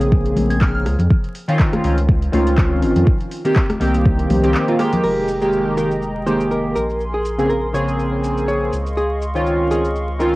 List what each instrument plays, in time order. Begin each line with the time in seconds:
Already playing: analog synth bass A#1, analog polysynth C#3 A#3 C4 G#4
0.01 closed hi-hat
0.12 kick
0.26 closed hi-hat
0.36 analog synth bass A#1, open hi-hat, high conga, low conga
0.50 synth bell G#6, closed hi-hat
0.61 synth bell F6, kick, clap
0.75 synth bell F6
0.86 analog synth bass C#2, cross-stick, open hi-hat
0.99 analog synth bass F2, closed hi-hat, low conga
1.10 kick
1.24 closed hi-hat
1.35 open hi-hat
1.48 analog polysynth D#3 C4 C#4 F4, closed hi-hat
1.59 kick, clap
1.73 cross-stick, closed hi-hat, high conga
1.83 analog synth bass C#2, analog polysynth D#3 C4 C#4 F4, open hi-hat
1.98 closed hi-hat
2.09 kick
2.22 closed hi-hat
2.32 analog synth bass C#2, analog polysynth D#3 C4 C#4 F4, open hi-hat, high conga
2.47 closed hi-hat
2.58 kick, clap
2.82 analog synth bass G#1, open hi-hat
2.96 analog synth bass F2, closed hi-hat, low conga
3.07 kick
3.21 closed hi-hat
3.32 open hi-hat
3.45 analog polysynth D#3 A#3 C4 G4, closed hi-hat
3.56 kick, clap
3.70 cross-stick, closed hi-hat, high conga
3.80 analog synth bass C2, analog polysynth D#3 A#3 C4 G4, open hi-hat
3.94 closed hi-hat
4.05 kick
4.19 closed hi-hat
4.30 analog synth bass C2, open hi-hat, high conga, low conga
4.43 analog polysynth D#3 A#3 C4 G4, closed hi-hat
4.54 clap
4.68 analog polysynth D#3 A#3 C4 F4, closed hi-hat
4.78 analog polysynth D#3 G#3 A#3 G4, cross-stick, open hi-hat
4.93 closed hi-hat, low conga
5.04 analog synth bass F1, analog synth pad G#3 D#5 G5 A#5, hollow-body jazz guitar A#4, crash, shaker
5.28 shaker
5.41 analog polysynth D#3 G#3 A#3 G4, shaker
5.53 shaker
5.77 analog polysynth D#3 G#3 A#3 G4, hollow-body jazz guitar A#4, shaker
5.91 shaker
6.02 shaker
6.26 analog polysynth D#3 G#3 A#3 G4, hollow-body jazz guitar C5, shaker
6.41 shaker
6.51 hollow-body jazz guitar A#4, shaker
6.76 analog synth bass A#1, hollow-body jazz guitar A#4, analog synth pad A#4 G#5 C6, shaker
6.90 shaker
7.01 shaker
7.14 hollow-body jazz guitar G#4
7.25 shaker
7.38 analog polysynth C#3 A#3 C4 G#4, shaker
7.50 hollow-body jazz guitar A#4, shaker
7.73 analog polysynth C#3 A#3 C4 G#4, hollow-body jazz guitar C#5, shaker
7.88 shaker
7.99 shaker
8.24 shaker
8.37 shaker
8.48 hollow-body jazz guitar C#5, shaker
8.73 analog synth bass C#2, analog synth pad D#5 F5 C6 C#6, shaker
8.86 shaker
8.97 hollow-body jazz guitar G#4, shaker
9.22 shaker
9.35 analog polysynth D#3 C4 C#4 F4, shaker
9.47 shaker
9.70 analog polysynth D#3 C4 C#4 F4, hollow-body jazz guitar G#4, shaker
9.85 shaker
9.96 shaker
10.19 analog polysynth D#3 C4 C#4 F4, hollow-body jazz guitar A#4, shaker